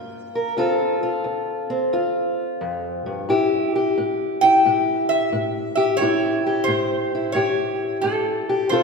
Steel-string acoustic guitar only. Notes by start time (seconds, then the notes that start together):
Already playing: G2 A#3 F4 A#4
0.35 A#4
0.57 D2 C4 F4 A4
1.03 F4
1.24 D2
1.70 C4
1.93 D2 F4
2.61 F2
3.06 G2
3.29 A2 E4 G4
3.76 G4
3.98 A2
4.43 E4
4.66 A2 G4
5.33 A2
5.77 G4
6.01 A2 E4 G4
6.47 G4
6.68 A2
7.15 E4
7.35 A2 G4
8.04 A2
8.49 G4
8.71 D2 C4 F4 A4